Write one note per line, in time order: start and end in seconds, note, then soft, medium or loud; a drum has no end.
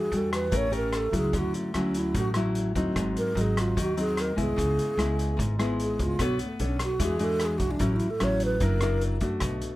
0.00 0.50 E3 medium
0.00 0.19 G#4 medium
0.12 0.49 E2 medium
0.12 0.51 G3 soft
0.12 0.51 D4 soft
0.12 0.51 F#4 soft
0.12 closed hi-hat soft
0.17 0.33 A4 medium
0.33 0.58 B4 medium
0.33 cross-stick medium
0.33 closed hi-hat soft
0.51 1.09 A1 medium
0.51 1.11 A3 medium
0.51 0.69 C#4 soft
0.51 0.69 G4 soft
0.51 0.70 A#4 medium
0.51 kick medium
0.51 closed hi-hat medium
0.57 0.75 C#5 medium
0.71 1.09 C#4 medium
0.71 1.09 G4 medium
0.71 1.10 A#4 medium
0.71 closed hi-hat soft
0.76 0.98 A#4 medium
0.93 1.15 A4 medium
0.93 cross-stick medium
0.93 closed hi-hat soft
1.12 1.32 C#2 medium
1.12 1.70 F#3 medium
1.12 1.70 C#4 medium
1.12 1.71 E4 medium
1.12 kick medium
1.12 closed hi-hat soft
1.17 1.39 G#4 medium
1.33 1.52 D2 medium
1.33 2.12 D3 medium
1.33 kick medium
1.33 closed hi-hat soft
1.38 1.56 F#4 medium
1.54 1.81 A3 medium
1.54 closed hi-hat soft
1.74 2.12 D2 medium
1.74 2.32 F#3 medium
1.74 2.32 C#4 medium
1.74 2.32 E4 medium
1.74 cross-stick medium
1.74 closed hi-hat soft
1.79 1.99 C#4 medium
1.94 2.16 E4 medium
1.94 closed hi-hat soft
2.14 2.71 A1 medium
2.14 2.93 A2 medium
2.14 2.29 F#4 medium
2.14 kick medium
2.14 closed hi-hat medium
2.34 2.72 F#3 medium
2.34 2.72 C#4 medium
2.34 2.73 E4 medium
2.34 cross-stick medium
2.34 closed hi-hat soft
2.55 closed hi-hat soft
2.75 2.94 D2 medium
2.75 3.33 F#3 medium
2.75 3.33 C4 medium
2.75 3.33 D#4 medium
2.75 kick medium
2.75 closed hi-hat soft
2.96 3.15 G#1 medium
2.96 3.75 G#2 medium
2.96 kick medium
2.96 cross-stick medium
2.96 closed hi-hat medium
3.17 3.43 A#4 medium
3.17 closed hi-hat soft
3.35 3.73 G#1 medium
3.35 3.94 F#3 medium
3.35 3.94 C4 soft
3.35 3.94 D#4 medium
3.35 closed hi-hat soft
3.41 3.61 G#4 medium
3.57 3.82 F4 medium
3.57 cross-stick medium
3.57 closed hi-hat soft
3.77 4.33 D#2 medium
3.77 4.55 D#3 medium
3.77 kick medium
3.77 closed hi-hat medium
3.81 3.99 F#4 medium
3.97 4.34 F#3 medium
3.97 4.34 C4 medium
3.97 4.34 D#4 medium
3.97 4.23 G#4 medium
3.97 closed hi-hat soft
4.17 4.39 A#4 medium
4.17 cross-stick medium
4.17 closed hi-hat soft
4.36 4.56 C2 medium
4.36 4.94 G#3 medium
4.36 4.94 B3 soft
4.36 4.95 E4 medium
4.36 kick medium
4.36 closed hi-hat soft
4.40 5.36 G#4 medium
4.56 4.76 C#2 medium
4.56 5.36 C#3 medium
4.56 kick medium
4.56 closed hi-hat medium
4.79 closed hi-hat soft
4.97 5.35 C#2 medium
4.97 5.55 G#3 medium
4.97 5.55 B3 medium
4.97 5.56 E4 medium
4.97 cross-stick medium
4.97 closed hi-hat soft
5.19 closed hi-hat soft
5.37 5.95 G#1 medium
5.37 6.16 G#2 soft
5.37 kick medium
5.37 closed hi-hat medium
5.59 6.16 G#3 medium
5.59 6.16 B3 medium
5.59 6.16 E4 medium
5.59 cross-stick soft
5.59 closed hi-hat soft
5.80 6.04 G#4 medium
5.80 closed hi-hat soft
5.99 6.18 C#2 medium
5.99 6.26 F4 medium
5.99 kick soft
5.99 closed hi-hat soft
6.19 6.38 B1 medium
6.19 6.98 B3 medium
6.19 6.46 D4 medium
6.19 6.46 A4 medium
6.19 6.46 C#5 medium
6.19 kick medium
6.19 cross-stick medium
6.19 closed hi-hat medium
6.24 6.42 F#4 medium
6.39 6.66 A3 soft
6.39 closed hi-hat soft
6.59 6.97 B1 medium
6.59 6.87 D4 medium
6.59 6.87 A4 medium
6.59 6.87 C#5 medium
6.59 closed hi-hat soft
6.64 6.82 C#4 medium
6.79 7.06 F#4 medium
6.79 cross-stick medium
6.79 closed hi-hat soft
6.99 7.56 E2 medium
6.99 7.78 E3 medium
6.99 7.17 G#3 soft
6.99 7.17 D4 medium
6.99 7.17 F#4 medium
6.99 kick medium
6.99 closed hi-hat medium
7.05 7.25 G#4 medium
7.19 7.77 G#3 medium
7.19 7.77 D4 medium
7.19 7.77 F#4 medium
7.19 closed hi-hat soft
7.24 7.47 A4 medium
7.40 cross-stick medium
7.40 closed hi-hat soft
7.45 7.59 G#4 medium
7.58 7.79 B1 medium
7.58 7.72 F#4 medium
7.58 kick medium
7.58 closed hi-hat soft
7.71 7.85 D4 medium
7.79 7.99 A1 medium
7.79 8.59 A2 medium
7.79 8.06 F#3 medium
7.79 8.07 C#4 medium
7.79 7.98 C#4 medium
7.79 8.07 E4 medium
7.79 kick medium
7.79 closed hi-hat medium
7.96 8.11 E4 medium
7.96 closed hi-hat soft
8.10 8.25 A4 medium
8.20 8.58 A1 medium
8.20 8.59 F#3 medium
8.20 8.59 C#4 medium
8.20 8.59 E4 medium
8.20 8.42 C#5 medium
8.20 cross-stick medium
8.20 closed hi-hat soft
8.40 closed hi-hat soft
8.45 8.66 B4 medium
8.60 9.18 F#1 medium
8.60 9.21 F#3 medium
8.60 8.78 D4 medium
8.60 8.78 E4 medium
8.60 8.79 A#4 medium
8.60 kick medium
8.60 closed hi-hat medium
8.64 9.03 A#4 medium
8.81 9.19 D4 medium
8.81 9.19 E4 medium
8.81 9.19 A#4 medium
8.81 cross-stick medium
8.81 closed hi-hat soft
9.01 closed hi-hat soft
9.20 9.40 F#2 medium
9.20 9.76 A3 medium
9.20 9.76 D4 medium
9.20 9.76 F#4 medium
9.20 kick soft
9.20 closed hi-hat soft
9.40 9.61 B1 medium
9.40 9.76 B2 medium
9.40 kick medium
9.40 cross-stick medium
9.40 closed hi-hat soft
9.61 closed hi-hat soft